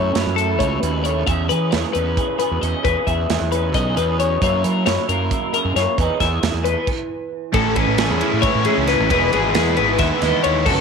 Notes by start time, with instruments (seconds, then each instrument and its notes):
Already playing: fingered electric bass F#2, clean electric guitar F#2 A3 C#4 E4 C#5
0.15 fingered electric bass F#2, clean electric guitar F#3 E4, snare, closed hi-hat
0.27 fingered electric bass F#2
0.36 clean electric guitar A3 A4, closed hi-hat
0.59 fingered electric bass C#2, clean electric guitar E4 C#5, kick, closed hi-hat
0.81 fingered electric bass D#2, clean electric guitar C#3 B4, closed hi-hat
0.85 clean electric guitar C#4
1.04 clean electric guitar A3 C#5, closed hi-hat
1.27 clean electric guitar E2 C#4 G#4 E5, fingered electric bass E2, kick, closed hi-hat
1.49 fingered electric bass E3, clean electric guitar G#4 B4, closed hi-hat
1.71 fingered electric bass E2, clean electric guitar E3 G#4 C#5, snare, closed hi-hat
1.93 fingered electric bass E2, clean electric guitar C#4 B4, closed hi-hat
2.17 clean electric guitar G#4, kick, closed hi-hat
2.39 clean electric guitar B2 G#4 B4, closed hi-hat
2.51 fingered electric bass E2
2.61 fingered electric bass E2, clean electric guitar C#4 D#5, closed hi-hat
2.84 fingered electric bass E2, clean electric guitar E2 C#4 G#4 B4, kick, closed hi-hat
3.07 fingered electric bass E2, clean electric guitar G#4 E5, kick, closed hi-hat
3.30 fingered electric bass E2, clean electric guitar E3 G#4, snare, closed hi-hat
3.41 fingered electric bass E2
3.52 clean electric guitar C#4 B4, closed hi-hat
3.74 fingered electric bass B1, clean electric guitar G#4 D#5, kick, closed hi-hat
3.96 fingered electric bass E2, clean electric guitar B2 G#4 B4, closed hi-hat
4.20 clean electric guitar C#4 C#5, closed hi-hat
4.42 fingered electric bass F#2, clean electric guitar F#2 A#3 C#4 E4 C#5, kick, closed hi-hat
4.64 fingered electric bass F#3, clean electric guitar C#4 A#4, closed hi-hat
4.86 fingered electric bass F#2, clean electric guitar F#3 E4 C#5, snare, closed hi-hat
5.08 fingered electric bass F#2, clean electric guitar A#3 A#4, closed hi-hat
5.31 clean electric guitar E4, kick, closed hi-hat
5.54 clean electric guitar C#3 C#4 A#4, closed hi-hat
5.65 fingered electric bass F#2
5.76 fingered electric bass F#2, clean electric guitar A#3 C#5, snare, closed hi-hat
5.98 fingered electric bass E2, clean electric guitar E2 B3 D#4 G#4 B4, kick, closed hi-hat
6.20 fingered electric bass E2, clean electric guitar E5, kick, snare, closed hi-hat
6.43 fingered electric bass E2, clean electric guitar E3 G#4, snare, closed hi-hat
6.54 fingered electric bass E2
6.64 clean electric guitar A3 B4, closed hi-hat
6.77 clean electric guitar B3
6.87 kick, crash
7.53 fingered electric bass A1, overdriven electric guitar A2 E3 A3 C#4 E4, clean electric guitar A2 A4, kick, ride
7.75 overdriven electric guitar A3 C#4 E4, clean electric guitar C#4 B4, kick, ride
7.88 fingered electric bass A1
7.98 overdriven electric guitar E3 A3 C#4 E4, clean electric guitar G#4, snare, ride
8.11 fingered electric bass E2
8.20 overdriven electric guitar A2 E3 A3 C#4 E4, clean electric guitar E4, ride
8.33 fingered electric bass A2
8.41 overdriven electric guitar E3 A3 C#4 E4, clean electric guitar E3 C#5, kick, ride
8.55 fingered electric bass A2
8.64 overdriven electric guitar A3 C#4 E4, clean electric guitar C#4 G#4, ride
8.77 fingered electric bass C#2
8.87 overdriven electric guitar A2 E3 A3 C#4 E4, clean electric guitar E3 B4, snare, ride
9.00 fingered electric bass A1
9.08 fingered electric bass E1, clean electric guitar E2 E3 B4, overdriven electric guitar E3 G#3 B3 E4, kick, ride
9.13 clean electric guitar B3 G#4
9.31 fingered electric bass G#1, overdriven electric guitar G#3 B3 E4, clean electric guitar B3 G#4, ride
9.53 fingered electric bass E2, overdriven electric guitar E3 G#3 B3 E4, snare, ride
9.58 clean electric guitar G#4
9.76 fingered electric bass G#1, overdriven electric guitar E3 G#3 B3 E4, clean electric guitar B4, ride
9.98 fingered electric bass D#2, overdriven electric guitar E3 G#3 B3 E4, clean electric guitar E3 E5, kick, snare, ride
10.21 fingered electric bass D#2, overdriven electric guitar G#3 B3 E4, clean electric guitar B3 D#5, snare, ride
10.42 fingered electric bass D#2, overdriven electric guitar E3 G#3 B3 E4, clean electric guitar E3 C#5, ride
10.64 fingered electric bass F#1, clean electric guitar F#2 A4, overdriven electric guitar F#3 A3 C#4 F#4, kick, crash